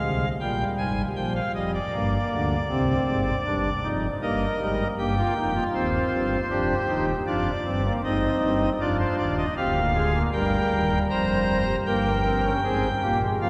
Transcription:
Already playing: G#3 F5
0.01 C2 C3
0.40 A#1 A#2 G3 G5
0.78 G#1 G#2 G#5
1.16 A#1 A#2 F3 G5
1.35 F5
1.55 F1 F2 G3 D#5
1.74 D5
1.93 G1 G2 A#3
2.31 D2 D3
2.70 C2 C3 C4
3.08 G#1 G#2
3.45 G1 G2 D4
3.84 F1 F2 D#4
4.22 G1 G2 A#3 A#4 D#5
4.60 G#1 G#2 G3
4.98 G1 G2 A#3 G4 G5
5.18 F4
5.36 F1 F2 D#4
5.55 F4
5.74 D#1 D#2 C4 C5
6.12 G1 G2
6.50 F1 F2 D4 G4
6.88 D#1 D#2 D#4
7.27 F1 F2 D4 F4 D5
7.66 G1 G2 C4
7.85 A#3
8.04 G#1 G#2 C4 D#4 D#5
8.42 G1 G2
8.80 F1 F2 D4 F4 D5
8.99 C5
9.18 D#1 D#2 D5
9.38 D#5
9.57 D1 D2 C4 G4 F5
9.76 A#3
9.95 G#3 G#4
10.14 A#3
10.33 G1 G2 G3 A#4 G5
10.71 D#1 D#2
11.10 F1 F2 C5 A#5
11.86 G1 G2 A#3 A#4 G5
12.25 C4
12.44 C#4
12.64 G#1 G#2 C4 G#4
13.02 A#1 A#2 A#3 G4
13.22 G#3
13.41 F2 F3 A#3 F4 F5

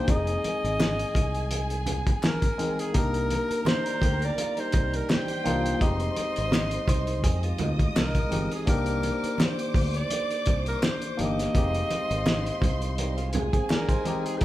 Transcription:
Already playing: A#3 D#4 C5
0.07 F1 G#3 C4 D#4 G#4 D#5 G#5, kick, closed hi-hat
0.27 closed hi-hat
0.44 muted fingered electric bass stroke, closed hi-hat, muted conga
0.64 G#1, closed hi-hat
0.80 snare, clap, high conga
0.99 closed hi-hat
1.14 C2, kick, closed hi-hat, low conga
1.35 closed hi-hat
1.51 closed hi-hat, muted conga
1.70 closed hi-hat
1.86 closed hi-hat, muted conga, low conga
2.07 kick, closed hi-hat
2.23 A#4, snare, clap, high conga
2.42 kick, closed hi-hat
2.58 G#3 C4 D#4 A#4, closed hi-hat, high conga
2.79 G#4, closed hi-hat
2.93 C2 A#3 D4 D#4 G4 A#4 A#5, kick, closed hi-hat, muted conga
2.97 A#4
3.14 closed hi-hat
3.30 closed hi-hat, muted conga
3.51 muted fingered electric bass stroke, closed hi-hat
3.65 D#4 C5, snare, clap, high conga
3.86 D4 A#4, closed hi-hat
4.01 D2 A#3 G4, kick, closed hi-hat, low conga
4.22 D5, closed hi-hat
4.38 F4, closed hi-hat, muted conga
4.57 G3 D#4 C5, closed hi-hat
4.72 C2, kick, closed hi-hat, muted conga
4.94 A#4, closed hi-hat
5.09 G4 C5 G5, snare, clap, high conga
5.28 closed hi-hat
5.44 C2 A#3 D4 D#4 F4, closed hi-hat, high conga
5.66 closed hi-hat
5.79 F1 G#3 C4 D#4 G4 C5 D#5 C6, kick, closed hi-hat
6.00 closed hi-hat
6.16 muted fingered electric bass stroke, closed hi-hat, muted conga
6.36 G#1, closed hi-hat
6.52 snare, clap, high conga
6.71 closed hi-hat
6.88 C2 D#4 C5, kick, closed hi-hat, low conga
7.07 closed hi-hat
7.24 F2 C4 G#4 D#5 D#6, kick, closed hi-hat, muted conga
7.43 G#3 F4, closed hi-hat
7.58 D2, closed hi-hat, muted conga, low conga
7.79 kick, closed hi-hat
7.96 C2 A#4, snare, clap, high conga
8.15 kick, closed hi-hat
8.29 G1 G#3 C4 D#4 G4, closed hi-hat, high conga
8.51 G#4, closed hi-hat
8.66 C2 A#3 D4 D#4 G4 C5 D5 D6, kick, closed hi-hat
8.70 A#4
8.86 closed hi-hat
9.03 closed hi-hat, muted conga
9.24 muted fingered electric bass stroke, closed hi-hat
9.38 snare, clap, high conga
9.43 C5
9.59 closed hi-hat
9.74 D2, kick, open hi-hat, low conga
9.94 D5, closed hi-hat
10.10 closed hi-hat, muted conga
10.30 closed hi-hat
10.46 C2, kick, closed hi-hat, muted conga
10.66 A#4, closed hi-hat
10.82 C5, snare, clap, high conga
11.02 closed hi-hat
11.17 G1 A#3 D4 D#4 G4 D#5, closed hi-hat, high conga
11.39 snare, closed hi-hat
11.54 F1 G#3 C4 D#4 G4 C5 F5 C6, kick, closed hi-hat
11.75 closed hi-hat
11.91 muted fingered electric bass stroke, closed hi-hat, muted conga
12.11 G#1, closed hi-hat
12.26 snare, clap, high conga
12.46 closed hi-hat
12.62 C2, kick, closed hi-hat, low conga
12.82 closed hi-hat
12.98 G3 D#4, closed hi-hat, muted conga
13.17 G#3 F4, closed hi-hat
13.33 G#4 G#5, closed hi-hat, muted conga, low conga
13.53 C4 G#4, kick, closed hi-hat
13.70 D4 A#4, snare, clap, high conga
13.89 D#4 C5, kick, closed hi-hat
14.05 G#3 C4 D#4 G4, closed hi-hat, high conga
14.26 G#4, closed hi-hat
14.38 A#3 D4 G4 C5, kick, closed hi-hat, muted conga

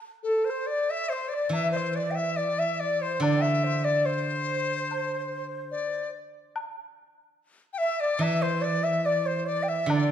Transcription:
0.23 A4
0.45 C5
0.50 C5
0.67 D5
0.90 E5
1.09 C5
1.29 D5
1.33 D5
1.49 E3 E5, high woodblock
1.56 E5
1.72 C5
1.76 C5
1.96 D5
2.10 G5
2.15 E5
2.36 D5
2.58 E5
2.74 E5
2.80 D5
3.01 C5
3.20 D3 D5, high woodblock
3.37 G5
3.42 E5
3.63 C5
3.84 D5
4.05 C5
4.91 high woodblock
5.71 D5
6.56 high woodblock
7.73 G5
7.78 E5
8.00 D5
8.19 E3 E5, high woodblock
8.41 C5
8.61 D5
8.83 E5
9.04 D5
9.25 C5
9.46 D5
9.62 G5
9.68 E5
9.86 D3 D5, high woodblock
9.91 D5

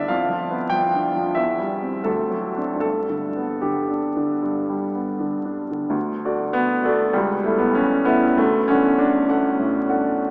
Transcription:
Already playing: G2 D3 B3 D4 D5 E5
0.08 F2 F5
0.29 F3
0.50 B3
0.70 F3 G5
0.94 D4
1.16 F3
1.35 E2 E5
1.59 G3
1.82 C4
2.04 D2 A4
2.30 F#3
2.56 C4 D4
2.76 G2
2.80 A4
3.10 D3
3.36 B3
3.61 D3 G4
3.88 D4
4.16 D3
4.42 G2
4.70 G3
4.95 B3
5.20 D3
5.45 D4
5.71 D3
5.90 D2
6.25 F#4 A4 D5
6.53 B3
6.83 A3 F#4 A4 D5
7.13 C#2 G3
7.44 A3 E4 A4 E5
7.58 B3
7.75 C#4
8.05 B3 E4 A4 E5
8.37 D2 A3
8.68 C#4 D4 A4 F#5
8.98 D4
9.28 D4 A4 F#5
9.59 A2
9.89 D4 A4 F#5

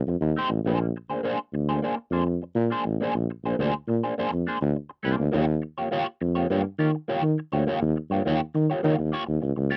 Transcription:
0.06 F2, muted clean electric guitar stroke
0.20 D#2, muted clean electric guitar stroke
0.36 A3 D#4 G4 C5
0.49 A1
0.64 A#1 A#3 D4 G#4 C5
0.81 muted clean electric guitar stroke
0.96 muted clean electric guitar stroke
1.09 D2 A#3 D4 G#4 C5
1.23 A#3 D4 G#4 C5
1.53 D2, muted clean electric guitar stroke
1.69 A#3 D4 G#4 C5
1.82 A#3 D4 G#4 C5
1.97 muted clean electric guitar stroke
2.10 F2 A#3 D4 G#4 C5
2.28 muted clean electric guitar stroke
2.42 muted clean electric guitar stroke
2.55 A#2, muted clean electric guitar stroke
2.70 A#3 D4 G#4 C5
2.85 A1
3.01 A#3 D4 G#4 C5
3.14 A#1, muted clean electric guitar stroke
3.30 muted clean electric guitar stroke
3.43 A#1 A#3 D4 G#4 C5
3.58 D2 A#3 D4 G#4 C5
3.88 A#2, muted clean electric guitar stroke
4.03 A#3 D4 G#4 C5
4.17 F2 A#3 D4 G#4 C5
4.32 F2
4.47 A#3 D4 G#4 C5
4.61 D2, muted clean electric guitar stroke
4.76 muted clean electric guitar stroke
4.90 muted clean electric guitar stroke
5.03 C2 A#3 D4 G#4 C5
5.18 D2, muted clean electric guitar stroke
5.32 D#2 A#3 F4 G4 C#5
5.47 muted clean electric guitar stroke
5.62 muted clean electric guitar stroke
5.78 F2 A#3 F4 G4 C#5
5.91 A#3 F4 G4 C#5
6.21 F2, muted clean electric guitar stroke
6.35 A#3 F4 G4 C#5
6.50 G2 A#3 F4 G4 C#5
6.64 muted clean electric guitar stroke
6.79 D#3 A#3 F4 G4 C#5
6.95 muted clean electric guitar stroke
7.08 A#3 F4 G4 C#5
7.22 D#3
7.38 muted clean electric guitar stroke
7.52 D2 A#3 F4 G4 C#5
7.67 A#3 F4 G4 C#5
7.82 D#2, muted clean electric guitar stroke
7.96 muted clean electric guitar stroke
8.10 G2 A#3 F4 G4 C#5
8.25 D#2 A#3 F4 G4 C#5
8.54 D#3, muted clean electric guitar stroke
8.70 A#3 F4 G4 C#5
8.83 D#3 A#3 F4 G4 C#5
8.98 D#2, muted clean electric guitar stroke
9.12 A#3 F4 G4 C#5
9.26 D#2, muted clean electric guitar stroke
9.41 C#2, muted clean electric guitar stroke
9.56 C#2, muted clean electric guitar stroke
9.70 A#3 F4 G4 C#5

